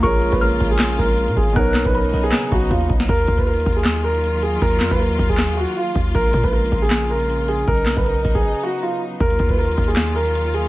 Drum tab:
HH |x-----x--x--x--x--x-----x--x--x--x--x--x--x-x-x-|x-----x--x--x--x--o-----x--x--x--x--x--x--x--x--|x--x--x--x--x-x-x-x-x-x-x--x-----x--x-----x-----|x--x--x--x--x-x-x-x-x-x-x--x-----x--x-----x-----|
CP |------------------------x-----------------------|------x-----------------x-----------------------|------------------------x-----------------------|------x-----------------x-----------------------|
SD |------------------------o-----------------------|------o-----------------o--------------------o--|------------------------o-----------------------|------o-----------------o-----------------------|
BD |o--------o--------o-----------o-----------o-----|o--------o--------------------o-----o-----o-----|o-----o--o--------o-----------------------------|o--------o--------o--o--------------------o-----|

HH |x--x--x--x--x-x-x-x-x-x-x--x-----x--x-----x-----|x--x--x--x--x-----o--x--------------------------|x--x--x--x--x-x-x-x-x-x-x--x-----x--x-----x-----|
CP |------------------------x-----------------------|------x-----------------------------------------|------------------------x-----------------------|
SD |------------------------o-----------------------|------o-----------------------------------------|------------------------o-----------------------|
BD |o-----o--o--------o-----------------------------|o--------o--------o--o--------------------------|o-----o--o--------o-----------------------------|